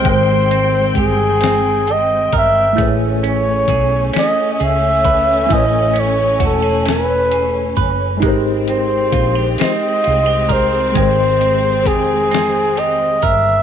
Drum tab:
HH |xxxxxx|xxxxxx|xxxxxx|xxxxxx|
SD |---o--|---o--|---o--|---o--|
BD |o-o--o|o-o--o|o-o--o|o-o--o|

HH |xxxxxx|
SD |---o--|
BD |o-o--o|